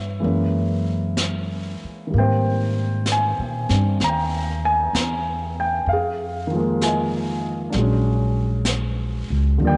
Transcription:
Already playing: G2 E3 B3 E4 G#4 B4 C#5 E5
0.20 E3 G#3 A#3, brush sweep
0.24 F#2 C#4
1.17 brush sweep, snare, hi-hat pedal
1.84 muted upright bass stroke
2.07 D#3 G3
2.12 G#2 A#3, brush sweep
2.18 C4 C5 G5
3.06 brush sweep, snare, hi-hat pedal
3.12 G#5
3.39 A#2
3.69 G2 C4 D4, snare
4.00 D#2, brush sweep, snare
4.04 A#5
4.09 G5
4.65 G#5
4.93 E2, brush sweep, snare, hi-hat pedal
5.60 G5
5.86 F2 F5, brush sweep
5.93 G#4
6.47 D#3 F3
6.55 G#3 A#3
6.81 G#5, brush sweep, snare, hi-hat pedal
6.86 D#5
7.70 D4, brush sweep, snare
7.74 A#1 F#3 G#3
7.82 C#4
8.65 brush sweep, snare, hi-hat pedal
9.30 C#2
9.57 D#2 D3 F3, brush sweep
9.62 G3 A#3 D5
9.67 G5

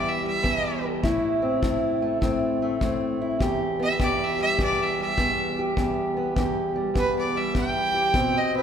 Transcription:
Already playing: E2 G3 B3 G4
0.08 E5
0.24 G3 E5
0.42 E2 B3, kick
0.81 G4
1.03 A2 E4, kick
1.42 C4
1.62 A2 E4, kick
2.02 A3
2.21 A2 C4, kick
2.62 A3
2.81 A2 C4, kick
3.22 E4
3.39 E2 G4, kick
3.80 B3 E5
3.99 E2 G4 D5, kick
4.23 E5
4.39 G3 E5
4.59 E2 B3, kick
4.63 D5
4.83 E5
4.99 G3 E5
5.17 E2 B3, kick
5.59 G4
5.77 E2 G4, kick
6.17 B3
6.36 E2 G4, kick
6.76 G3
6.94 E2 B3, kick
6.99 B4
7.19 D5
7.35 G3 E5
7.54 E2 B3 G5, kick
7.94 G4
8.14 B2 C4, kick
8.37 D#5
8.55 C4 B4

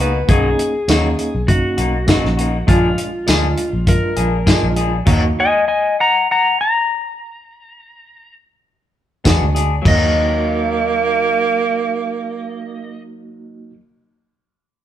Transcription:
Already playing: C#2 A#3 D#4 G#4
0.00 A#3 B3 D#4 F#4
0.28 B1 F#3 A#3 C#4 D#4 F#4 G#4, kick, closed hi-hat
0.59 closed hi-hat
0.88 D#2 F#3 A#3 C#4 D#4 F#4, snare, closed hi-hat, tambourine
1.19 closed hi-hat
1.35 B1
1.47 A#3 C#4 D#4 F#4, kick, closed hi-hat
1.78 B1 A#3 D#4 F#4, closed hi-hat
2.07 F#3 A#3 C#4 D#4 F#4, kick, snare, closed hi-hat, tambourine
2.24 A#1, snare
2.37 A#3 D#4 F#4, closed hi-hat
2.66 A#1 F3 G#3 A#3 D4 F4 G#4, kick, closed hi-hat
2.98 closed hi-hat
3.26 D2 F3 G#3 A#3 D4 F4 G#4, snare, closed hi-hat, tambourine
3.57 closed hi-hat
3.73 A#1
3.87 G#3 D4 F4 A#4, kick, closed hi-hat
4.16 A#1 A#3 D4 G#4, closed hi-hat
4.46 F3 G#3 A#3 D4 F4 G#4, kick, snare, closed hi-hat, tambourine
4.63 A#1
4.76 A#3 D4 G#4, closed hi-hat
5.06 D#2 F#3 A#3 D#4 F#4, kick, closed hi-hat, crash
5.40 D#5 G#5
5.68 D#5 G#5
6.00 F#5 A#5
6.31 F#5 A#5
6.61 A#5
9.24 E2 G#3 B3 D4 F#4 G#4, kick, snare, closed hi-hat, tambourine
9.42 D2
9.55 D4 G#4, closed hi-hat
9.82 D#2 F#3 A#3 D#4, kick, crash
9.88 A#3 F#4 D#5
9.95 D#4

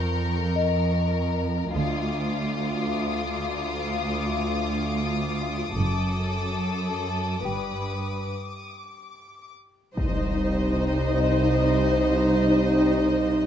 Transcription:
Already playing: F2 A#4 F5 C#6 G6
0.56 D#5
1.74 D2 F4 D6 D#6
5.77 F#1 F#2 A4
7.44 G1 G2 G4 B4 G5
9.97 C2 G3 D#4 C5 D#5, impact
11.20 D#4 D#5

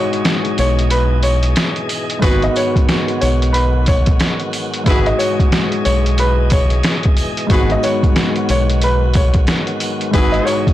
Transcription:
Already playing: G#2 B2 E3 G#3 D#4 F#4 G#4 C#5 D#5
0.13 closed hi-hat
0.25 snare, closed hi-hat, sleigh bells
0.45 closed hi-hat
0.58 B1 C#5, closed hi-hat, sleigh bells
0.79 closed hi-hat
0.90 B4, closed hi-hat, sleigh bells
1.23 C#5, closed hi-hat, sleigh bells
1.43 closed hi-hat
1.56 snare, closed hi-hat, sleigh bells
1.76 closed hi-hat
1.89 closed hi-hat, sleigh bells
2.10 closed hi-hat
2.19 G#1 G#2 D#3 F#3 G#3 B3 F#4 G#4 B4, kick, closed hi-hat
2.23 B3 F#4, sleigh bells
2.42 D#5, closed hi-hat
2.56 C#5, closed hi-hat, sleigh bells
2.76 kick, closed hi-hat
2.88 snare, closed hi-hat, sleigh bells
3.08 closed hi-hat
3.21 B1 C#5, closed hi-hat, sleigh bells
3.42 closed hi-hat
3.53 B4, closed hi-hat, sleigh bells
3.86 C#5, kick, closed hi-hat, sleigh bells
4.06 kick, closed hi-hat
4.20 snare, closed hi-hat, sleigh bells
4.40 closed hi-hat
4.53 closed hi-hat, sleigh bells
4.74 closed hi-hat
4.84 G#1 G#2 B2 E3 G#3 E4 G#4 B4 D#5, kick, closed hi-hat, sleigh bells
4.88 D#4 F#4
5.06 D#5, closed hi-hat
5.18 C#5, closed hi-hat, sleigh bells
5.40 kick, closed hi-hat
5.52 snare, closed hi-hat, sleigh bells
5.72 closed hi-hat
5.85 B1 C#5, closed hi-hat, sleigh bells
6.06 closed hi-hat
6.18 B4, closed hi-hat, sleigh bells
6.50 C#5, kick, closed hi-hat, sleigh bells
6.70 closed hi-hat
6.83 snare, closed hi-hat, sleigh bells
7.03 kick, closed hi-hat
7.17 closed hi-hat, sleigh bells
7.37 closed hi-hat
7.47 G#1 G#2 D#3 F#3 G#3 B3 F#4 G#4 B4, kick, closed hi-hat, sleigh bells
7.51 B3 F#4
7.70 D#5, closed hi-hat
7.83 C#5, closed hi-hat, sleigh bells
8.03 kick, closed hi-hat
8.16 snare, closed hi-hat, sleigh bells
8.36 closed hi-hat
8.49 B1 C#5, closed hi-hat, sleigh bells
8.69 closed hi-hat
8.81 B4, closed hi-hat, sleigh bells
9.14 C#5, kick, closed hi-hat, sleigh bells
9.34 kick, closed hi-hat
9.47 snare, closed hi-hat, sleigh bells
9.67 closed hi-hat
9.80 closed hi-hat, sleigh bells
10.01 closed hi-hat
10.11 G#1 G#2 B2 E3 G#3 E4 G#4 B4 D#5, kick, closed hi-hat, sleigh bells
10.15 D#4 F#4
10.32 D#5, closed hi-hat
10.45 C#5, closed hi-hat, sleigh bells
10.67 kick, closed hi-hat

